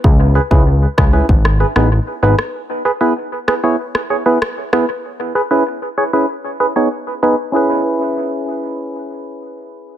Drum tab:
SD |------r--r-r---r|------r--r--r-r-|----------------|----------------|
BD |o--o--o-o-------|----------------|----------------|----------------|